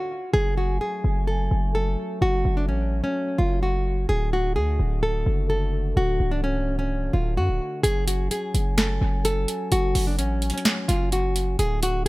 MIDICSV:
0, 0, Header, 1, 5, 480
1, 0, Start_track
1, 0, Key_signature, 3, "minor"
1, 0, Tempo, 468750
1, 349, Time_signature, 4, 2, 24, 8
1, 12371, End_track
2, 0, Start_track
2, 0, Title_t, "Nylon-string guitar"
2, 0, Program_c, 0, 24
2, 0, Note_on_c, 0, 66, 72
2, 321, Note_off_c, 0, 66, 0
2, 343, Note_on_c, 0, 68, 106
2, 551, Note_off_c, 0, 68, 0
2, 589, Note_on_c, 0, 66, 74
2, 794, Note_off_c, 0, 66, 0
2, 829, Note_on_c, 0, 68, 80
2, 1281, Note_off_c, 0, 68, 0
2, 1305, Note_on_c, 0, 69, 84
2, 1758, Note_off_c, 0, 69, 0
2, 1791, Note_on_c, 0, 69, 88
2, 2241, Note_off_c, 0, 69, 0
2, 2272, Note_on_c, 0, 66, 101
2, 2609, Note_off_c, 0, 66, 0
2, 2631, Note_on_c, 0, 62, 82
2, 2733, Note_off_c, 0, 62, 0
2, 2750, Note_on_c, 0, 61, 75
2, 3088, Note_off_c, 0, 61, 0
2, 3110, Note_on_c, 0, 61, 88
2, 3448, Note_off_c, 0, 61, 0
2, 3465, Note_on_c, 0, 65, 81
2, 3672, Note_off_c, 0, 65, 0
2, 3714, Note_on_c, 0, 66, 75
2, 4163, Note_off_c, 0, 66, 0
2, 4188, Note_on_c, 0, 68, 110
2, 4393, Note_off_c, 0, 68, 0
2, 4436, Note_on_c, 0, 66, 83
2, 4638, Note_off_c, 0, 66, 0
2, 4668, Note_on_c, 0, 68, 81
2, 5119, Note_off_c, 0, 68, 0
2, 5148, Note_on_c, 0, 69, 81
2, 5600, Note_off_c, 0, 69, 0
2, 5629, Note_on_c, 0, 69, 86
2, 6080, Note_off_c, 0, 69, 0
2, 6112, Note_on_c, 0, 66, 101
2, 6449, Note_off_c, 0, 66, 0
2, 6466, Note_on_c, 0, 62, 74
2, 6570, Note_off_c, 0, 62, 0
2, 6592, Note_on_c, 0, 61, 82
2, 6929, Note_off_c, 0, 61, 0
2, 6950, Note_on_c, 0, 61, 83
2, 7288, Note_off_c, 0, 61, 0
2, 7305, Note_on_c, 0, 65, 75
2, 7512, Note_off_c, 0, 65, 0
2, 7551, Note_on_c, 0, 66, 73
2, 8001, Note_off_c, 0, 66, 0
2, 8023, Note_on_c, 0, 68, 105
2, 8230, Note_off_c, 0, 68, 0
2, 8269, Note_on_c, 0, 66, 75
2, 8474, Note_off_c, 0, 66, 0
2, 8511, Note_on_c, 0, 68, 82
2, 8961, Note_off_c, 0, 68, 0
2, 8987, Note_on_c, 0, 69, 88
2, 9439, Note_off_c, 0, 69, 0
2, 9472, Note_on_c, 0, 69, 92
2, 9922, Note_off_c, 0, 69, 0
2, 9955, Note_on_c, 0, 66, 99
2, 10290, Note_off_c, 0, 66, 0
2, 10312, Note_on_c, 0, 62, 79
2, 10413, Note_off_c, 0, 62, 0
2, 10431, Note_on_c, 0, 61, 74
2, 10769, Note_off_c, 0, 61, 0
2, 10790, Note_on_c, 0, 61, 85
2, 11128, Note_off_c, 0, 61, 0
2, 11145, Note_on_c, 0, 65, 77
2, 11352, Note_off_c, 0, 65, 0
2, 11394, Note_on_c, 0, 66, 77
2, 11843, Note_off_c, 0, 66, 0
2, 11870, Note_on_c, 0, 68, 114
2, 12074, Note_off_c, 0, 68, 0
2, 12115, Note_on_c, 0, 66, 81
2, 12317, Note_off_c, 0, 66, 0
2, 12371, End_track
3, 0, Start_track
3, 0, Title_t, "Brass ensemble"
3, 0, Program_c, 1, 61
3, 0, Note_on_c, 1, 38, 79
3, 0, Note_on_c, 1, 50, 73
3, 0, Note_on_c, 1, 57, 70
3, 0, Note_on_c, 1, 66, 88
3, 176, Note_off_c, 1, 38, 0
3, 176, Note_off_c, 1, 50, 0
3, 176, Note_off_c, 1, 57, 0
3, 176, Note_off_c, 1, 66, 0
3, 350, Note_on_c, 1, 54, 78
3, 350, Note_on_c, 1, 57, 87
3, 350, Note_on_c, 1, 61, 73
3, 350, Note_on_c, 1, 80, 74
3, 2250, Note_off_c, 1, 80, 0
3, 2270, Note_on_c, 1, 66, 75
3, 4151, Note_off_c, 1, 54, 0
3, 4151, Note_off_c, 1, 57, 0
3, 4151, Note_off_c, 1, 61, 0
3, 4189, Note_on_c, 1, 57, 75
3, 4190, Note_on_c, 1, 50, 80
3, 7989, Note_off_c, 1, 66, 0
3, 7991, Note_off_c, 1, 50, 0
3, 7991, Note_off_c, 1, 57, 0
3, 8030, Note_on_c, 1, 54, 81
3, 8030, Note_on_c, 1, 61, 77
3, 8030, Note_on_c, 1, 80, 73
3, 11831, Note_off_c, 1, 54, 0
3, 11831, Note_off_c, 1, 61, 0
3, 11831, Note_off_c, 1, 80, 0
3, 11869, Note_on_c, 1, 50, 81
3, 11869, Note_on_c, 1, 57, 74
3, 11869, Note_on_c, 1, 66, 77
3, 12371, Note_off_c, 1, 50, 0
3, 12371, Note_off_c, 1, 57, 0
3, 12371, Note_off_c, 1, 66, 0
3, 12371, End_track
4, 0, Start_track
4, 0, Title_t, "808-style bass"
4, 0, Program_c, 2, 38
4, 348, Note_on_c, 2, 30, 113
4, 809, Note_off_c, 2, 30, 0
4, 1068, Note_on_c, 2, 30, 104
4, 1529, Note_off_c, 2, 30, 0
4, 1548, Note_on_c, 2, 30, 105
4, 2009, Note_off_c, 2, 30, 0
4, 2268, Note_on_c, 2, 30, 115
4, 2499, Note_off_c, 2, 30, 0
4, 2509, Note_on_c, 2, 30, 101
4, 2748, Note_on_c, 2, 33, 98
4, 2764, Note_off_c, 2, 30, 0
4, 3091, Note_off_c, 2, 33, 0
4, 3469, Note_on_c, 2, 30, 107
4, 4160, Note_off_c, 2, 30, 0
4, 4189, Note_on_c, 2, 26, 103
4, 4669, Note_on_c, 2, 38, 98
4, 4684, Note_off_c, 2, 26, 0
4, 4897, Note_off_c, 2, 38, 0
4, 4909, Note_on_c, 2, 26, 105
4, 5370, Note_off_c, 2, 26, 0
4, 5389, Note_on_c, 2, 30, 107
4, 6080, Note_off_c, 2, 30, 0
4, 6109, Note_on_c, 2, 26, 112
4, 6339, Note_off_c, 2, 26, 0
4, 6349, Note_on_c, 2, 25, 104
4, 7271, Note_off_c, 2, 25, 0
4, 7309, Note_on_c, 2, 26, 112
4, 7548, Note_on_c, 2, 42, 100
4, 7564, Note_off_c, 2, 26, 0
4, 7669, Note_on_c, 2, 26, 102
4, 7685, Note_off_c, 2, 42, 0
4, 7783, Note_off_c, 2, 26, 0
4, 8029, Note_on_c, 2, 30, 115
4, 8490, Note_off_c, 2, 30, 0
4, 8749, Note_on_c, 2, 30, 105
4, 9210, Note_off_c, 2, 30, 0
4, 9229, Note_on_c, 2, 30, 107
4, 9690, Note_off_c, 2, 30, 0
4, 9950, Note_on_c, 2, 30, 113
4, 10180, Note_off_c, 2, 30, 0
4, 10189, Note_on_c, 2, 30, 105
4, 10429, Note_on_c, 2, 33, 96
4, 10445, Note_off_c, 2, 30, 0
4, 10771, Note_off_c, 2, 33, 0
4, 11149, Note_on_c, 2, 30, 105
4, 11840, Note_off_c, 2, 30, 0
4, 11869, Note_on_c, 2, 26, 105
4, 12364, Note_off_c, 2, 26, 0
4, 12371, End_track
5, 0, Start_track
5, 0, Title_t, "Drums"
5, 8029, Note_on_c, 9, 42, 75
5, 8131, Note_off_c, 9, 42, 0
5, 8270, Note_on_c, 9, 42, 81
5, 8372, Note_off_c, 9, 42, 0
5, 8510, Note_on_c, 9, 42, 71
5, 8613, Note_off_c, 9, 42, 0
5, 8751, Note_on_c, 9, 42, 65
5, 8853, Note_off_c, 9, 42, 0
5, 8988, Note_on_c, 9, 42, 81
5, 8990, Note_on_c, 9, 38, 118
5, 9090, Note_off_c, 9, 42, 0
5, 9092, Note_off_c, 9, 38, 0
5, 9470, Note_on_c, 9, 42, 76
5, 9573, Note_off_c, 9, 42, 0
5, 9710, Note_on_c, 9, 42, 84
5, 9812, Note_off_c, 9, 42, 0
5, 9950, Note_on_c, 9, 42, 73
5, 10052, Note_off_c, 9, 42, 0
5, 10190, Note_on_c, 9, 46, 82
5, 10292, Note_off_c, 9, 46, 0
5, 10431, Note_on_c, 9, 42, 71
5, 10533, Note_off_c, 9, 42, 0
5, 10670, Note_on_c, 9, 42, 56
5, 10750, Note_off_c, 9, 42, 0
5, 10750, Note_on_c, 9, 42, 55
5, 10830, Note_off_c, 9, 42, 0
5, 10830, Note_on_c, 9, 42, 56
5, 10907, Note_off_c, 9, 42, 0
5, 10907, Note_on_c, 9, 42, 82
5, 10909, Note_on_c, 9, 38, 116
5, 11009, Note_off_c, 9, 42, 0
5, 11011, Note_off_c, 9, 38, 0
5, 11150, Note_on_c, 9, 42, 80
5, 11252, Note_off_c, 9, 42, 0
5, 11390, Note_on_c, 9, 42, 76
5, 11492, Note_off_c, 9, 42, 0
5, 11630, Note_on_c, 9, 42, 84
5, 11732, Note_off_c, 9, 42, 0
5, 11869, Note_on_c, 9, 42, 71
5, 11971, Note_off_c, 9, 42, 0
5, 12110, Note_on_c, 9, 42, 80
5, 12212, Note_off_c, 9, 42, 0
5, 12371, End_track
0, 0, End_of_file